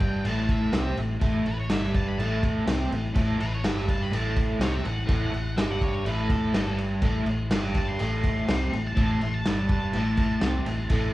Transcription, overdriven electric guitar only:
Already playing: G2 G3
0.24 A2 A3
0.73 C3 C4
0.98 A2
1.20 A2 A3
1.46 A2
1.71 G2 G3
2.19 A2 A3
2.66 C3 C4
2.90 A2
3.14 A2 A3
3.38 A2
3.63 G2 G3
4.11 A2 A3
4.59 C3 C4
4.83 A2
5.06 A2 A3
5.32 A2
5.56 G2 G3
6.04 A2 A3
6.53 G2 G3
7.02 A2 A3
7.26 A2
7.51 G2 G3
7.98 A2 A3
8.47 C3 C4
8.72 A2
8.95 A2 A3
9.21 A2
9.46 G2 G3
9.93 A2 A3
10.42 C3 C4
10.66 A2
10.89 A2 A3

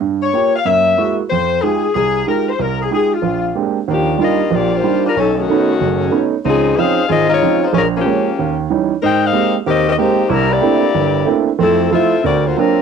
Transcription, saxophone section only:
0.23 C#5
0.56 F5
0.67 E5
1.30 C5
1.62 G#4
1.95 G#4
2.29 A#4
2.50 C5
2.62 A#4
2.82 G#4
2.93 G#4
3.14 F4
3.90 F3 A#3 D4 G4
4.21 A#3 F4 G4 D#5
4.52 A#3 F4 G4 D5
4.74 A#3 F4 G4 C5
5.06 G3 D4 F4 A#4
5.17 F#3 C#4 D#4 A4
5.37 D#3 A3 C#4 F#4
6.45 F3 C4 D#4 G#4
6.77 D#4 G#4 C5 F5
7.09 C4 F4 G#4 D#5
7.30 G#3 D#4 F4 C#5
7.64 G#3 D#4 F4 C5
7.75 G#3 C#4 F4 A#4
7.97 F3 A#3 C#4 G4
9.03 D#4 A#4 C5 G5
9.24 D#4 A#4 C5 F5
9.67 C4 G4 A#4 D#5
9.88 C4 G4 A#4 D#5
9.99 A#3 D#4 G4 C5
10.29 G3 D4 E4 A#4
10.50 A#3 E4 G4 D5
11.60 F3 C4 E4 A4
11.92 C4 F4 A4 E5
12.24 C4 F#4 A#4 D5
12.46 A#3 F4 F#4 C5
12.58 F#3 C4 F4 A#4

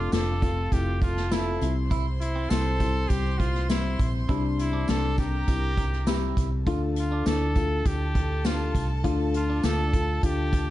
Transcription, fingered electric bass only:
0.13 F1
0.72 F1
1.61 C2
2.51 C2
3.10 C2
4.00 A#1
4.29 C2
4.89 C2
5.48 C2
6.37 C2
6.67 D2
7.26 D2
7.86 D2
8.75 C2
9.04 D2
9.64 D2
10.23 D2

